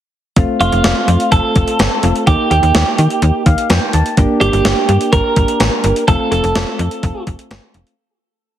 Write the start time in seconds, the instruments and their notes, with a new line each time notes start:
0.36 fm bass F1, synth keys A3 C4 F4, kick, closed hi-hat
0.60 fm bass F1, clean electric guitar F4, closed hi-hat
0.72 fm bass F1, closed hi-hat
0.84 fm bass F1, snare, closed hi-hat
1.08 fm bass F2, closed hi-hat
1.20 closed hi-hat
1.32 fm bass F1, clean electric guitar A4, kick, closed hi-hat
1.56 fm bass F1, kick, closed hi-hat
1.68 closed hi-hat
1.79 fm bass G1, snare, closed hi-hat
2.03 fm bass F1, synth keys A3 C4 F4, closed hi-hat
2.16 closed hi-hat
2.27 fm bass D#2, synth keys A#3 D#4 G4, clean electric guitar G4, kick, closed hi-hat
2.51 fm bass D#2, clean electric guitar G4, closed hi-hat
2.63 fm bass D#2, closed hi-hat
2.75 fm bass D#2, snare, closed hi-hat
2.98 fm bass D#3, closed hi-hat
3.10 closed hi-hat
3.22 fm bass D#2, closed hi-hat
3.46 fm bass D#2, synth keys F5, kick, closed hi-hat
3.58 closed hi-hat
3.70 fm bass F2, synth keys G5, snare, closed hi-hat
3.93 fm bass D#2, synth keys A5, closed hi-hat
4.06 closed hi-hat
4.17 fm bass G1, synth keys A#3 D4 G4, kick, closed hi-hat
4.41 fm bass G1, clean electric guitar G4, closed hi-hat
4.53 fm bass G1, closed hi-hat
4.65 fm bass G1, snare, closed hi-hat
4.89 fm bass G2, closed hi-hat
5.01 closed hi-hat
5.13 fm bass G1, clean electric guitar A#4, kick, closed hi-hat
5.36 fm bass G1, kick, closed hi-hat
5.48 closed hi-hat
5.60 fm bass A1, snare, closed hi-hat
5.84 fm bass G1, closed hi-hat
5.96 closed hi-hat
6.08 fm bass F1, synth keys A3 C4 F4, clean electric guitar A4, kick, closed hi-hat
6.32 fm bass F1, clean electric guitar A4, closed hi-hat
6.44 fm bass F1, closed hi-hat
6.55 fm bass F1, snare, closed hi-hat
6.79 fm bass F2, closed hi-hat
6.91 closed hi-hat
7.03 fm bass F1, kick, closed hi-hat
7.27 fm bass F1, kick, closed hi-hat
7.39 closed hi-hat
7.51 fm bass G1, snare, closed hi-hat
7.74 fm bass F1, closed hi-hat
7.87 closed hi-hat